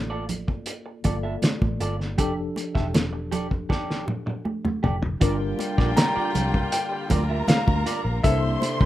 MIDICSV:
0, 0, Header, 1, 11, 480
1, 0, Start_track
1, 0, Tempo, 757576
1, 1384, Time_signature, 4, 2, 24, 8
1, 5610, End_track
2, 0, Start_track
2, 0, Title_t, "Grand piano"
2, 0, Program_c, 0, 0
2, 3779, Note_on_c, 0, 82, 98
2, 4261, Note_on_c, 0, 79, 89
2, 4275, Note_off_c, 0, 82, 0
2, 4740, Note_on_c, 0, 77, 90
2, 4756, Note_off_c, 0, 79, 0
2, 5195, Note_off_c, 0, 77, 0
2, 5218, Note_on_c, 0, 76, 96
2, 5610, Note_off_c, 0, 76, 0
2, 5610, End_track
3, 0, Start_track
3, 0, Title_t, "Violin section"
3, 0, Program_c, 1, 48
3, 3304, Note_on_c, 1, 67, 77
3, 3305, Note_on_c, 1, 79, 88
3, 4479, Note_off_c, 1, 67, 0
3, 4479, Note_off_c, 1, 79, 0
3, 4497, Note_on_c, 1, 82, 91
3, 4499, Note_on_c, 1, 70, 87
3, 5204, Note_off_c, 1, 82, 0
3, 5205, Note_off_c, 1, 70, 0
3, 5220, Note_on_c, 1, 72, 79
3, 5221, Note_on_c, 1, 84, 92
3, 5610, Note_off_c, 1, 72, 0
3, 5610, Note_off_c, 1, 84, 0
3, 5610, End_track
4, 0, Start_track
4, 0, Title_t, "Clean electric guitar"
4, 0, Program_c, 2, 27
4, 63, Note_on_c, 2, 74, 69
4, 66, Note_on_c, 2, 69, 66
4, 70, Note_on_c, 2, 65, 57
4, 153, Note_off_c, 2, 74, 0
4, 154, Note_off_c, 2, 69, 0
4, 156, Note_off_c, 2, 65, 0
4, 660, Note_on_c, 2, 65, 50
4, 665, Note_on_c, 2, 69, 52
4, 666, Note_on_c, 2, 74, 49
4, 732, Note_off_c, 2, 65, 0
4, 734, Note_off_c, 2, 69, 0
4, 735, Note_off_c, 2, 74, 0
4, 781, Note_on_c, 2, 76, 52
4, 784, Note_on_c, 2, 69, 44
4, 787, Note_on_c, 2, 65, 43
4, 853, Note_off_c, 2, 76, 0
4, 854, Note_off_c, 2, 69, 0
4, 855, Note_off_c, 2, 65, 0
4, 1143, Note_on_c, 2, 65, 72
4, 1147, Note_on_c, 2, 69, 79
4, 1150, Note_on_c, 2, 74, 75
4, 1233, Note_off_c, 2, 65, 0
4, 1235, Note_off_c, 2, 69, 0
4, 1236, Note_off_c, 2, 74, 0
4, 1381, Note_on_c, 2, 67, 58
4, 1385, Note_on_c, 2, 69, 62
4, 1387, Note_on_c, 2, 74, 65
4, 1472, Note_off_c, 2, 67, 0
4, 1474, Note_off_c, 2, 69, 0
4, 1475, Note_off_c, 2, 74, 0
4, 1740, Note_on_c, 2, 76, 51
4, 1744, Note_on_c, 2, 69, 43
4, 1747, Note_on_c, 2, 67, 46
4, 1812, Note_off_c, 2, 76, 0
4, 1814, Note_off_c, 2, 69, 0
4, 1815, Note_off_c, 2, 67, 0
4, 2100, Note_on_c, 2, 67, 65
4, 2104, Note_on_c, 2, 69, 66
4, 2107, Note_on_c, 2, 74, 66
4, 2192, Note_off_c, 2, 67, 0
4, 2194, Note_off_c, 2, 69, 0
4, 2195, Note_off_c, 2, 74, 0
4, 2340, Note_on_c, 2, 67, 70
4, 2343, Note_on_c, 2, 69, 74
4, 2345, Note_on_c, 2, 74, 74
4, 2563, Note_off_c, 2, 67, 0
4, 2564, Note_off_c, 2, 69, 0
4, 2565, Note_off_c, 2, 74, 0
4, 3059, Note_on_c, 2, 67, 51
4, 3062, Note_on_c, 2, 69, 56
4, 3065, Note_on_c, 2, 74, 50
4, 3132, Note_off_c, 2, 67, 0
4, 3133, Note_off_c, 2, 69, 0
4, 3134, Note_off_c, 2, 74, 0
4, 3300, Note_on_c, 2, 65, 69
4, 3305, Note_on_c, 2, 70, 70
4, 3306, Note_on_c, 2, 74, 72
4, 3391, Note_off_c, 2, 65, 0
4, 3394, Note_off_c, 2, 70, 0
4, 3394, Note_off_c, 2, 74, 0
4, 3662, Note_on_c, 2, 74, 57
4, 3667, Note_on_c, 2, 70, 55
4, 3669, Note_on_c, 2, 65, 49
4, 3733, Note_off_c, 2, 74, 0
4, 3735, Note_off_c, 2, 70, 0
4, 3736, Note_off_c, 2, 65, 0
4, 3901, Note_on_c, 2, 74, 66
4, 3906, Note_on_c, 2, 70, 60
4, 3909, Note_on_c, 2, 65, 59
4, 3992, Note_off_c, 2, 74, 0
4, 3994, Note_off_c, 2, 70, 0
4, 3995, Note_off_c, 2, 65, 0
4, 4504, Note_on_c, 2, 65, 50
4, 4507, Note_on_c, 2, 70, 53
4, 4510, Note_on_c, 2, 74, 59
4, 4573, Note_off_c, 2, 65, 0
4, 4575, Note_off_c, 2, 70, 0
4, 4576, Note_off_c, 2, 74, 0
4, 4622, Note_on_c, 2, 76, 50
4, 4626, Note_on_c, 2, 70, 46
4, 4629, Note_on_c, 2, 65, 41
4, 4692, Note_off_c, 2, 76, 0
4, 4694, Note_off_c, 2, 70, 0
4, 4696, Note_off_c, 2, 65, 0
4, 4979, Note_on_c, 2, 65, 67
4, 4983, Note_on_c, 2, 70, 74
4, 4987, Note_on_c, 2, 74, 80
4, 5070, Note_off_c, 2, 65, 0
4, 5072, Note_off_c, 2, 70, 0
4, 5074, Note_off_c, 2, 74, 0
4, 5222, Note_on_c, 2, 58, 85
4, 5225, Note_on_c, 2, 64, 74
4, 5228, Note_on_c, 2, 69, 87
4, 5311, Note_off_c, 2, 58, 0
4, 5313, Note_off_c, 2, 64, 0
4, 5314, Note_off_c, 2, 69, 0
4, 5580, Note_on_c, 2, 70, 56
4, 5584, Note_on_c, 2, 64, 52
4, 5587, Note_on_c, 2, 58, 45
4, 5610, Note_off_c, 2, 58, 0
4, 5610, Note_off_c, 2, 64, 0
4, 5610, Note_off_c, 2, 70, 0
4, 5610, End_track
5, 0, Start_track
5, 0, Title_t, "Tine electric piano"
5, 0, Program_c, 3, 4
5, 0, Control_c, 3, 64, 127
5, 0, Note_on_c, 3, 58, 65
5, 0, Note_on_c, 3, 65, 67
5, 0, Note_on_c, 3, 69, 63
5, 0, Note_on_c, 3, 74, 75
5, 636, Note_off_c, 3, 58, 0
5, 639, Note_off_c, 3, 65, 0
5, 641, Note_off_c, 3, 69, 0
5, 643, Note_off_c, 3, 74, 0
5, 662, Note_on_c, 3, 58, 50
5, 665, Note_on_c, 3, 65, 46
5, 667, Note_on_c, 3, 69, 46
5, 670, Note_on_c, 3, 74, 56
5, 1378, Note_on_c, 3, 53, 61
5, 1382, Note_on_c, 3, 62, 64
5, 1383, Note_off_c, 3, 58, 0
5, 1384, Note_off_c, 3, 65, 0
5, 1386, Note_off_c, 3, 69, 0
5, 1387, Note_off_c, 3, 74, 0
5, 1388, Note_on_c, 3, 67, 62
5, 1392, Note_on_c, 3, 69, 66
5, 1393, Control_c, 3, 64, 0
5, 1509, Control_c, 3, 64, 127
5, 3275, Note_off_c, 3, 53, 0
5, 3277, Note_off_c, 3, 62, 0
5, 3280, Note_off_c, 3, 67, 0
5, 3282, Note_off_c, 3, 69, 0
5, 3297, Note_on_c, 3, 55, 71
5, 3302, Note_on_c, 3, 62, 68
5, 3307, Note_on_c, 3, 65, 62
5, 3311, Note_on_c, 3, 70, 75
5, 3313, Control_c, 3, 64, 0
5, 3413, Control_c, 3, 64, 127
5, 5193, Note_off_c, 3, 55, 0
5, 5195, Note_off_c, 3, 62, 0
5, 5198, Note_off_c, 3, 65, 0
5, 5200, Note_off_c, 3, 70, 0
5, 5214, Note_on_c, 3, 48, 67
5, 5218, Note_on_c, 3, 58, 54
5, 5222, Note_on_c, 3, 62, 55
5, 5225, Note_on_c, 3, 64, 59
5, 5228, Control_c, 3, 64, 0
5, 5230, Note_on_c, 3, 69, 67
5, 5341, Control_c, 3, 64, 127
5, 5610, Note_off_c, 3, 48, 0
5, 5610, Note_off_c, 3, 58, 0
5, 5610, Note_off_c, 3, 62, 0
5, 5610, Note_off_c, 3, 64, 0
5, 5610, Note_off_c, 3, 69, 0
5, 5610, End_track
6, 0, Start_track
6, 0, Title_t, "String section"
6, 0, Program_c, 4, 48
6, 3303, Note_on_c, 4, 58, 76
6, 3304, Note_on_c, 4, 50, 75
6, 3304, Note_on_c, 4, 55, 74
6, 3305, Note_on_c, 4, 65, 94
6, 5202, Note_off_c, 4, 55, 0
6, 5203, Note_off_c, 4, 65, 0
6, 5220, Note_on_c, 4, 64, 90
6, 5221, Note_on_c, 4, 69, 78
6, 5610, Note_off_c, 4, 50, 0
6, 5610, Note_off_c, 4, 58, 0
6, 5610, Note_off_c, 4, 64, 0
6, 5610, Note_off_c, 4, 69, 0
6, 5610, End_track
7, 0, Start_track
7, 0, Title_t, "Horn section"
7, 0, Program_c, 5, 61
7, 3308, Note_on_c, 5, 58, 78
7, 3309, Note_on_c, 5, 50, 82
7, 3309, Note_on_c, 5, 65, 81
7, 4959, Note_off_c, 5, 50, 0
7, 4959, Note_off_c, 5, 58, 0
7, 4959, Note_off_c, 5, 65, 0
7, 5224, Note_on_c, 5, 52, 77
7, 5224, Note_on_c, 5, 62, 77
7, 5224, Note_on_c, 5, 67, 89
7, 5610, Note_off_c, 5, 52, 0
7, 5610, Note_off_c, 5, 62, 0
7, 5610, Note_off_c, 5, 67, 0
7, 5610, End_track
8, 0, Start_track
8, 0, Title_t, "Fingered electric bass"
8, 0, Program_c, 6, 33
8, 0, Note_on_c, 6, 33, 79
8, 399, Note_off_c, 6, 33, 0
8, 665, Note_on_c, 6, 31, 75
8, 860, Note_off_c, 6, 31, 0
8, 1024, Note_on_c, 6, 33, 75
8, 1122, Note_off_c, 6, 33, 0
8, 1145, Note_on_c, 6, 31, 73
8, 1384, Note_off_c, 6, 31, 0
8, 1384, Note_on_c, 6, 29, 92
8, 1579, Note_off_c, 6, 29, 0
8, 1745, Note_on_c, 6, 28, 69
8, 2679, Note_off_c, 6, 28, 0
8, 3065, Note_on_c, 6, 29, 73
8, 3260, Note_off_c, 6, 29, 0
8, 3304, Note_on_c, 6, 31, 90
8, 3499, Note_off_c, 6, 31, 0
8, 3663, Note_on_c, 6, 34, 83
8, 3761, Note_off_c, 6, 34, 0
8, 4026, Note_on_c, 6, 36, 81
8, 4220, Note_off_c, 6, 36, 0
8, 4506, Note_on_c, 6, 38, 94
8, 4700, Note_off_c, 6, 38, 0
8, 4865, Note_on_c, 6, 38, 94
8, 4961, Note_off_c, 6, 38, 0
8, 5099, Note_on_c, 6, 34, 95
8, 5198, Note_off_c, 6, 34, 0
8, 5223, Note_on_c, 6, 36, 92
8, 5418, Note_off_c, 6, 36, 0
8, 5580, Note_on_c, 6, 36, 83
8, 5610, Note_off_c, 6, 36, 0
8, 5610, End_track
9, 0, Start_track
9, 0, Title_t, "Muted clean electric guitar strokes"
9, 185, Note_on_c, 9, 29, 33
9, 248, Note_off_c, 9, 29, 0
9, 303, Note_on_c, 9, 29, 34
9, 366, Note_off_c, 9, 29, 0
9, 423, Note_on_c, 9, 29, 33
9, 487, Note_off_c, 9, 29, 0
9, 543, Note_on_c, 9, 29, 42
9, 606, Note_off_c, 9, 29, 0
9, 1025, Note_on_c, 9, 29, 38
9, 1089, Note_off_c, 9, 29, 0
9, 1263, Note_on_c, 9, 29, 38
9, 1326, Note_off_c, 9, 29, 0
9, 1623, Note_on_c, 9, 29, 32
9, 1687, Note_off_c, 9, 29, 0
9, 1862, Note_on_c, 9, 29, 27
9, 1925, Note_off_c, 9, 29, 0
9, 1981, Note_on_c, 9, 29, 40
9, 2045, Note_off_c, 9, 29, 0
9, 2579, Note_on_c, 9, 29, 30
9, 2643, Note_off_c, 9, 29, 0
9, 2700, Note_on_c, 9, 29, 38
9, 2764, Note_off_c, 9, 29, 0
9, 2820, Note_on_c, 9, 29, 36
9, 2883, Note_off_c, 9, 29, 0
9, 3181, Note_on_c, 9, 29, 43
9, 3245, Note_off_c, 9, 29, 0
9, 3544, Note_on_c, 9, 29, 39
9, 3607, Note_off_c, 9, 29, 0
9, 3783, Note_on_c, 9, 29, 37
9, 3847, Note_off_c, 9, 29, 0
9, 4022, Note_on_c, 9, 29, 37
9, 4085, Note_off_c, 9, 29, 0
9, 4142, Note_on_c, 9, 29, 42
9, 4205, Note_off_c, 9, 29, 0
9, 4264, Note_on_c, 9, 29, 40
9, 4328, Note_off_c, 9, 29, 0
9, 4383, Note_on_c, 9, 29, 34
9, 4446, Note_off_c, 9, 29, 0
9, 4863, Note_on_c, 9, 29, 39
9, 4926, Note_off_c, 9, 29, 0
9, 5101, Note_on_c, 9, 29, 38
9, 5165, Note_off_c, 9, 29, 0
9, 5462, Note_on_c, 9, 29, 37
9, 5525, Note_off_c, 9, 29, 0
9, 5610, End_track
10, 0, Start_track
10, 0, Title_t, "Muted fingered electric bass strokes"
10, 3907, Note_on_c, 9, 29, 43
10, 3970, Note_off_c, 9, 29, 0
10, 4740, Note_on_c, 9, 29, 45
10, 4804, Note_off_c, 9, 29, 0
10, 5610, End_track
11, 0, Start_track
11, 0, Title_t, "Drums"
11, 183, Note_on_c, 9, 42, 64
11, 184, Note_on_c, 9, 64, 68
11, 247, Note_off_c, 9, 42, 0
11, 248, Note_off_c, 9, 64, 0
11, 305, Note_on_c, 9, 36, 67
11, 369, Note_off_c, 9, 36, 0
11, 417, Note_on_c, 9, 42, 76
11, 480, Note_off_c, 9, 42, 0
11, 659, Note_on_c, 9, 42, 63
11, 663, Note_on_c, 9, 62, 41
11, 663, Note_on_c, 9, 64, 60
11, 665, Note_on_c, 9, 36, 70
11, 722, Note_off_c, 9, 42, 0
11, 726, Note_off_c, 9, 62, 0
11, 726, Note_off_c, 9, 64, 0
11, 728, Note_off_c, 9, 36, 0
11, 900, Note_on_c, 9, 63, 61
11, 903, Note_on_c, 9, 42, 79
11, 910, Note_on_c, 9, 38, 103
11, 964, Note_off_c, 9, 63, 0
11, 966, Note_off_c, 9, 42, 0
11, 973, Note_off_c, 9, 38, 0
11, 1025, Note_on_c, 9, 36, 77
11, 1025, Note_on_c, 9, 63, 64
11, 1088, Note_off_c, 9, 36, 0
11, 1088, Note_off_c, 9, 63, 0
11, 1144, Note_on_c, 9, 42, 63
11, 1207, Note_off_c, 9, 42, 0
11, 1270, Note_on_c, 9, 38, 31
11, 1334, Note_off_c, 9, 38, 0
11, 1383, Note_on_c, 9, 42, 68
11, 1384, Note_on_c, 9, 36, 85
11, 1447, Note_off_c, 9, 42, 0
11, 1448, Note_off_c, 9, 36, 0
11, 1623, Note_on_c, 9, 62, 43
11, 1632, Note_on_c, 9, 42, 59
11, 1686, Note_off_c, 9, 62, 0
11, 1695, Note_off_c, 9, 42, 0
11, 1744, Note_on_c, 9, 36, 78
11, 1751, Note_on_c, 9, 38, 31
11, 1808, Note_off_c, 9, 36, 0
11, 1814, Note_off_c, 9, 38, 0
11, 1866, Note_on_c, 9, 63, 63
11, 1867, Note_on_c, 9, 42, 79
11, 1871, Note_on_c, 9, 38, 95
11, 1929, Note_off_c, 9, 63, 0
11, 1930, Note_off_c, 9, 42, 0
11, 1934, Note_off_c, 9, 38, 0
11, 2105, Note_on_c, 9, 42, 58
11, 2107, Note_on_c, 9, 64, 70
11, 2169, Note_off_c, 9, 42, 0
11, 2170, Note_off_c, 9, 64, 0
11, 2225, Note_on_c, 9, 36, 70
11, 2288, Note_off_c, 9, 36, 0
11, 2343, Note_on_c, 9, 36, 77
11, 2353, Note_on_c, 9, 38, 48
11, 2407, Note_off_c, 9, 36, 0
11, 2416, Note_off_c, 9, 38, 0
11, 2474, Note_on_c, 9, 38, 45
11, 2538, Note_off_c, 9, 38, 0
11, 2584, Note_on_c, 9, 48, 54
11, 2584, Note_on_c, 9, 62, 42
11, 2647, Note_off_c, 9, 62, 0
11, 2648, Note_off_c, 9, 48, 0
11, 2704, Note_on_c, 9, 48, 52
11, 2768, Note_off_c, 9, 48, 0
11, 2822, Note_on_c, 9, 63, 61
11, 2885, Note_off_c, 9, 63, 0
11, 2944, Note_on_c, 9, 45, 64
11, 2947, Note_on_c, 9, 63, 64
11, 3007, Note_off_c, 9, 45, 0
11, 3010, Note_off_c, 9, 63, 0
11, 3065, Note_on_c, 9, 43, 89
11, 3129, Note_off_c, 9, 43, 0
11, 3184, Note_on_c, 9, 43, 75
11, 3248, Note_off_c, 9, 43, 0
11, 3302, Note_on_c, 9, 42, 66
11, 3304, Note_on_c, 9, 36, 94
11, 3366, Note_off_c, 9, 42, 0
11, 3368, Note_off_c, 9, 36, 0
11, 3540, Note_on_c, 9, 62, 43
11, 3550, Note_on_c, 9, 42, 67
11, 3604, Note_off_c, 9, 62, 0
11, 3613, Note_off_c, 9, 42, 0
11, 3664, Note_on_c, 9, 36, 84
11, 3670, Note_on_c, 9, 38, 35
11, 3727, Note_off_c, 9, 36, 0
11, 3733, Note_off_c, 9, 38, 0
11, 3782, Note_on_c, 9, 63, 63
11, 3785, Note_on_c, 9, 42, 93
11, 3789, Note_on_c, 9, 38, 110
11, 3846, Note_off_c, 9, 63, 0
11, 3848, Note_off_c, 9, 42, 0
11, 3853, Note_off_c, 9, 38, 0
11, 4023, Note_on_c, 9, 64, 72
11, 4025, Note_on_c, 9, 42, 75
11, 4086, Note_off_c, 9, 64, 0
11, 4088, Note_off_c, 9, 42, 0
11, 4145, Note_on_c, 9, 36, 79
11, 4208, Note_off_c, 9, 36, 0
11, 4259, Note_on_c, 9, 42, 77
11, 4322, Note_off_c, 9, 42, 0
11, 4499, Note_on_c, 9, 42, 67
11, 4499, Note_on_c, 9, 62, 50
11, 4499, Note_on_c, 9, 64, 69
11, 4504, Note_on_c, 9, 36, 72
11, 4562, Note_off_c, 9, 42, 0
11, 4562, Note_off_c, 9, 62, 0
11, 4562, Note_off_c, 9, 64, 0
11, 4568, Note_off_c, 9, 36, 0
11, 4737, Note_on_c, 9, 63, 71
11, 4742, Note_on_c, 9, 42, 80
11, 4749, Note_on_c, 9, 38, 117
11, 4800, Note_off_c, 9, 63, 0
11, 4805, Note_off_c, 9, 42, 0
11, 4812, Note_off_c, 9, 38, 0
11, 4864, Note_on_c, 9, 36, 84
11, 4864, Note_on_c, 9, 63, 70
11, 4927, Note_off_c, 9, 36, 0
11, 4927, Note_off_c, 9, 63, 0
11, 4983, Note_on_c, 9, 42, 78
11, 5046, Note_off_c, 9, 42, 0
11, 5222, Note_on_c, 9, 36, 103
11, 5222, Note_on_c, 9, 42, 69
11, 5285, Note_off_c, 9, 36, 0
11, 5285, Note_off_c, 9, 42, 0
11, 5460, Note_on_c, 9, 62, 45
11, 5468, Note_on_c, 9, 42, 70
11, 5523, Note_off_c, 9, 62, 0
11, 5531, Note_off_c, 9, 42, 0
11, 5580, Note_on_c, 9, 36, 86
11, 5610, Note_off_c, 9, 36, 0
11, 5610, End_track
0, 0, End_of_file